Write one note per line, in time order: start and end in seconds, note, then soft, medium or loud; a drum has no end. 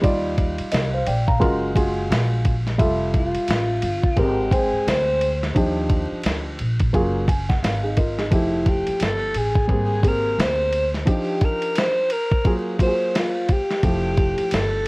0.01 0.56 D#2 medium
0.01 1.04 G3 medium
0.01 1.04 D#4 medium
0.01 1.04 F4 medium
0.01 0.73 D5 medium
0.01 kick medium
0.01 ride medium
0.38 kick medium
0.38 ride medium
0.59 muted upright bass stroke soft
0.59 ride soft
0.72 1.06 C2 medium
0.72 0.93 A#4 medium
0.72 0.92 D#5 medium
0.72 snare loud
0.72 hi-hat pedal medium
0.72 ride medium
0.93 1.07 C5 medium
0.93 1.06 F5 medium
1.06 1.40 A#1 medium
1.06 1.27 D5 soft
1.06 1.27 G5 medium
1.06 ride medium
1.27 1.61 F5 medium
1.27 1.61 A#5 medium
1.27 kick medium
1.39 2.07 F#1 medium
1.39 1.70 G#3 medium
1.39 1.70 F4 medium
1.39 1.70 F#4 medium
1.39 1.71 A#4 medium
1.39 kick medium
1.39 ride medium
1.75 2.52 G#3 medium
1.75 2.52 F4 medium
1.75 2.53 F#4 medium
1.75 2.53 G#4 medium
1.75 kick medium
1.75 ride medium
2.10 2.76 A#1 medium
2.10 snare loud
2.10 hi-hat pedal soft
2.10 ride medium
2.45 kick medium
2.45 ride soft
2.67 snare soft
2.67 ride soft
2.78 3.33 F1 medium
2.78 3.80 G3 medium
2.78 3.81 F4 medium
2.78 3.81 A4 medium
2.78 3.80 E5 medium
2.78 kick medium
2.78 ride medium
3.14 4.21 F4 medium
3.14 kick medium
3.14 ride medium
3.35 muted upright bass stroke soft
3.35 ride soft
3.48 3.81 A1 medium
3.48 snare loud
3.48 hi-hat pedal soft
3.48 ride medium
3.82 4.16 G1 medium
3.82 ride medium
4.04 kick medium
4.16 4.70 G#1 medium
4.16 4.46 G#3 medium
4.16 4.47 C4 medium
4.16 4.47 G4 medium
4.16 4.56 G4 medium
4.16 4.47 A#4 medium
4.16 kick medium
4.16 ride medium
4.51 5.28 G#3 medium
4.51 5.28 C4 medium
4.51 4.91 G#4 medium
4.51 5.29 C5 medium
4.51 5.29 G5 medium
4.51 kick medium
4.51 ride medium
4.74 muted upright bass stroke soft
4.87 5.52 D2 medium
4.87 5.43 C5 medium
4.87 snare medium
4.87 hi-hat pedal soft
4.87 ride medium
5.21 ride soft
5.43 snare soft
5.43 ride soft
5.54 6.09 D#2 medium
5.54 6.56 F3 medium
5.54 6.56 D4 medium
5.54 6.57 D#4 medium
5.54 6.57 G4 medium
5.54 kick medium
5.54 ride medium
5.90 kick medium
5.90 ride medium
6.12 muted upright bass stroke soft
6.24 6.58 D2 medium
6.24 snare medium
6.24 hi-hat pedal soft
6.24 ride medium
6.59 6.92 A#1 medium
6.59 ride medium
6.79 kick medium
6.79 ride soft
6.93 7.59 F#1 loud
6.93 7.22 F#3 medium
6.93 7.22 A#3 medium
6.93 7.23 F4 medium
6.93 7.23 G#4 medium
6.93 kick medium
6.93 ride medium
7.28 7.48 G#5 medium
7.28 kick medium
7.28 ride medium
7.49 7.62 F#5 medium
7.49 kick medium
7.49 snare soft
7.63 8.32 G#1 medium
7.63 7.95 F5 medium
7.63 snare medium
7.63 hi-hat pedal medium
7.63 ride medium
7.83 7.97 D#4 soft
7.83 7.96 G#4 medium
7.97 8.18 F4 soft
7.97 8.17 A#4 medium
7.97 8.29 D#5 medium
7.97 kick medium
7.97 ride soft
8.18 8.51 D#4 soft
8.18 8.51 G#4 medium
8.18 snare soft
8.18 ride soft
8.30 8.84 F1 medium
8.30 9.32 F3 medium
8.30 9.32 A3 medium
8.30 9.32 E4 medium
8.30 8.70 E4 medium
8.30 9.33 G4 medium
8.30 kick medium
8.30 ride medium
8.66 9.05 G4 medium
8.66 kick medium
8.66 ride medium
8.87 muted upright bass stroke soft
8.87 ride soft
9.00 9.33 G1 medium
9.00 9.39 A4 medium
9.00 snare medium
9.00 hi-hat pedal soft
9.00 ride medium
9.34 9.68 A1 medium
9.34 10.09 G#4 loud
9.34 ride medium
9.55 kick medium
9.67 10.35 G#1 medium
9.67 9.98 G3 medium
9.67 9.98 A#3 medium
9.67 9.98 C4 medium
9.67 9.99 G#4 medium
9.67 kick medium
9.67 ride medium
10.02 10.80 A#3 medium
10.02 10.80 C4 medium
10.02 10.79 G4 medium
10.02 10.80 G#4 medium
10.02 kick medium
10.02 ride medium
10.07 10.42 A#4 loud
10.38 11.04 D2 medium
10.38 10.95 C5 medium
10.38 snare loud
10.38 hi-hat pedal medium
10.38 ride medium
10.72 ride soft
10.94 snare soft
10.94 ride soft
11.05 12.07 F3 medium
11.05 12.08 D4 medium
11.05 12.08 D#4 medium
11.05 12.08 G4 medium
11.05 kick medium
11.05 ride medium
11.10 11.46 G4 medium
11.41 11.80 A#4 medium
11.41 kick medium
11.41 ride medium
11.62 ride soft
11.75 12.14 C5 loud
11.75 snare loud
11.75 hi-hat pedal medium
11.75 ride medium
12.10 12.55 A#4 medium
12.10 ride medium
12.31 kick medium
12.44 12.74 F#3 medium
12.44 12.74 A#3 medium
12.44 12.75 F4 medium
12.44 12.75 G#4 medium
12.44 kick medium
12.44 ride medium
12.78 13.55 F#3 medium
12.78 13.56 A#3 medium
12.78 13.56 F4 medium
12.78 12.88 F#4 medium
12.78 kick medium
12.78 ride medium
12.82 13.13 C5 medium
12.87 13.60 G#4 medium
13.15 13.54 F4 medium
13.15 snare medium
13.15 hi-hat pedal medium
13.15 ride medium
13.49 14.56 G4 loud
13.49 kick medium
13.49 ride soft
13.71 snare soft
13.71 ride soft
13.83 14.36 F1 medium
13.83 14.84 F3 medium
13.83 14.84 A3 medium
13.83 14.84 E4 medium
13.83 14.85 G4 medium
13.83 kick medium
13.83 ride medium
14.17 kick medium
14.17 ride medium
14.38 muted upright bass stroke soft
14.38 ride soft
14.51 14.85 G1 medium
14.51 14.88 A4 medium
14.51 snare loud
14.51 hi-hat pedal medium
14.51 ride medium